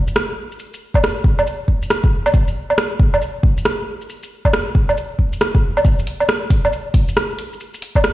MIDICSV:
0, 0, Header, 1, 2, 480
1, 0, Start_track
1, 0, Tempo, 437956
1, 649, Time_signature, 4, 2, 24, 8
1, 8913, End_track
2, 0, Start_track
2, 0, Title_t, "Drums"
2, 84, Note_on_c, 9, 82, 52
2, 174, Note_off_c, 9, 82, 0
2, 174, Note_on_c, 9, 37, 99
2, 174, Note_on_c, 9, 82, 56
2, 284, Note_off_c, 9, 37, 0
2, 284, Note_off_c, 9, 82, 0
2, 566, Note_on_c, 9, 82, 30
2, 650, Note_off_c, 9, 82, 0
2, 650, Note_on_c, 9, 82, 54
2, 760, Note_off_c, 9, 82, 0
2, 808, Note_on_c, 9, 82, 51
2, 918, Note_off_c, 9, 82, 0
2, 1034, Note_on_c, 9, 36, 60
2, 1044, Note_on_c, 9, 77, 50
2, 1137, Note_on_c, 9, 37, 106
2, 1137, Note_on_c, 9, 82, 58
2, 1144, Note_off_c, 9, 36, 0
2, 1153, Note_off_c, 9, 77, 0
2, 1247, Note_off_c, 9, 37, 0
2, 1247, Note_off_c, 9, 82, 0
2, 1362, Note_on_c, 9, 36, 106
2, 1472, Note_off_c, 9, 36, 0
2, 1521, Note_on_c, 9, 77, 58
2, 1521, Note_on_c, 9, 82, 29
2, 1611, Note_off_c, 9, 82, 0
2, 1611, Note_on_c, 9, 82, 53
2, 1631, Note_off_c, 9, 77, 0
2, 1720, Note_off_c, 9, 82, 0
2, 1842, Note_on_c, 9, 36, 59
2, 1951, Note_off_c, 9, 36, 0
2, 1999, Note_on_c, 9, 82, 56
2, 2086, Note_off_c, 9, 82, 0
2, 2086, Note_on_c, 9, 37, 107
2, 2086, Note_on_c, 9, 82, 55
2, 2196, Note_off_c, 9, 37, 0
2, 2196, Note_off_c, 9, 82, 0
2, 2233, Note_on_c, 9, 36, 99
2, 2342, Note_off_c, 9, 36, 0
2, 2477, Note_on_c, 9, 77, 65
2, 2477, Note_on_c, 9, 82, 32
2, 2561, Note_on_c, 9, 36, 122
2, 2564, Note_off_c, 9, 82, 0
2, 2564, Note_on_c, 9, 82, 57
2, 2586, Note_off_c, 9, 77, 0
2, 2671, Note_off_c, 9, 36, 0
2, 2674, Note_off_c, 9, 82, 0
2, 2714, Note_on_c, 9, 82, 52
2, 2824, Note_off_c, 9, 82, 0
2, 2960, Note_on_c, 9, 77, 50
2, 3045, Note_on_c, 9, 37, 105
2, 3045, Note_on_c, 9, 82, 57
2, 3070, Note_off_c, 9, 77, 0
2, 3155, Note_off_c, 9, 37, 0
2, 3155, Note_off_c, 9, 82, 0
2, 3283, Note_on_c, 9, 36, 112
2, 3392, Note_off_c, 9, 36, 0
2, 3439, Note_on_c, 9, 77, 57
2, 3526, Note_on_c, 9, 82, 53
2, 3549, Note_off_c, 9, 77, 0
2, 3635, Note_off_c, 9, 82, 0
2, 3763, Note_on_c, 9, 36, 102
2, 3872, Note_off_c, 9, 36, 0
2, 3918, Note_on_c, 9, 82, 56
2, 4004, Note_off_c, 9, 82, 0
2, 4004, Note_on_c, 9, 37, 104
2, 4004, Note_on_c, 9, 82, 55
2, 4114, Note_off_c, 9, 37, 0
2, 4114, Note_off_c, 9, 82, 0
2, 4397, Note_on_c, 9, 82, 30
2, 4486, Note_off_c, 9, 82, 0
2, 4486, Note_on_c, 9, 82, 52
2, 4596, Note_off_c, 9, 82, 0
2, 4636, Note_on_c, 9, 82, 48
2, 4745, Note_off_c, 9, 82, 0
2, 4877, Note_on_c, 9, 36, 59
2, 4879, Note_on_c, 9, 77, 47
2, 4970, Note_on_c, 9, 37, 108
2, 4970, Note_on_c, 9, 82, 53
2, 4986, Note_off_c, 9, 36, 0
2, 4988, Note_off_c, 9, 77, 0
2, 5079, Note_off_c, 9, 37, 0
2, 5079, Note_off_c, 9, 82, 0
2, 5205, Note_on_c, 9, 36, 101
2, 5315, Note_off_c, 9, 36, 0
2, 5360, Note_on_c, 9, 77, 52
2, 5360, Note_on_c, 9, 82, 30
2, 5452, Note_off_c, 9, 82, 0
2, 5452, Note_on_c, 9, 82, 52
2, 5470, Note_off_c, 9, 77, 0
2, 5561, Note_off_c, 9, 82, 0
2, 5686, Note_on_c, 9, 36, 58
2, 5795, Note_off_c, 9, 36, 0
2, 5839, Note_on_c, 9, 82, 51
2, 5930, Note_off_c, 9, 82, 0
2, 5930, Note_on_c, 9, 37, 105
2, 5930, Note_on_c, 9, 82, 52
2, 6040, Note_off_c, 9, 37, 0
2, 6040, Note_off_c, 9, 82, 0
2, 6079, Note_on_c, 9, 36, 100
2, 6189, Note_off_c, 9, 36, 0
2, 6324, Note_on_c, 9, 77, 60
2, 6324, Note_on_c, 9, 82, 30
2, 6408, Note_on_c, 9, 36, 110
2, 6411, Note_off_c, 9, 82, 0
2, 6411, Note_on_c, 9, 82, 52
2, 6433, Note_off_c, 9, 77, 0
2, 6517, Note_off_c, 9, 36, 0
2, 6521, Note_off_c, 9, 82, 0
2, 6567, Note_on_c, 9, 82, 49
2, 6653, Note_on_c, 9, 46, 68
2, 6677, Note_off_c, 9, 82, 0
2, 6762, Note_off_c, 9, 46, 0
2, 6799, Note_on_c, 9, 77, 46
2, 6891, Note_on_c, 9, 37, 109
2, 6891, Note_on_c, 9, 82, 52
2, 6909, Note_off_c, 9, 77, 0
2, 7000, Note_off_c, 9, 37, 0
2, 7000, Note_off_c, 9, 82, 0
2, 7127, Note_on_c, 9, 36, 103
2, 7129, Note_on_c, 9, 46, 67
2, 7237, Note_off_c, 9, 36, 0
2, 7239, Note_off_c, 9, 46, 0
2, 7286, Note_on_c, 9, 77, 55
2, 7374, Note_on_c, 9, 82, 50
2, 7396, Note_off_c, 9, 77, 0
2, 7483, Note_off_c, 9, 82, 0
2, 7607, Note_on_c, 9, 36, 97
2, 7609, Note_on_c, 9, 46, 76
2, 7716, Note_off_c, 9, 36, 0
2, 7718, Note_off_c, 9, 46, 0
2, 7765, Note_on_c, 9, 82, 51
2, 7855, Note_off_c, 9, 82, 0
2, 7855, Note_on_c, 9, 37, 101
2, 7855, Note_on_c, 9, 82, 53
2, 7965, Note_off_c, 9, 37, 0
2, 7965, Note_off_c, 9, 82, 0
2, 8095, Note_on_c, 9, 46, 64
2, 8204, Note_off_c, 9, 46, 0
2, 8251, Note_on_c, 9, 82, 29
2, 8333, Note_off_c, 9, 82, 0
2, 8333, Note_on_c, 9, 82, 53
2, 8443, Note_off_c, 9, 82, 0
2, 8483, Note_on_c, 9, 82, 51
2, 8572, Note_on_c, 9, 46, 73
2, 8593, Note_off_c, 9, 82, 0
2, 8682, Note_off_c, 9, 46, 0
2, 8717, Note_on_c, 9, 36, 57
2, 8724, Note_on_c, 9, 77, 49
2, 8811, Note_on_c, 9, 37, 104
2, 8811, Note_on_c, 9, 82, 54
2, 8827, Note_off_c, 9, 36, 0
2, 8833, Note_off_c, 9, 77, 0
2, 8913, Note_off_c, 9, 37, 0
2, 8913, Note_off_c, 9, 82, 0
2, 8913, End_track
0, 0, End_of_file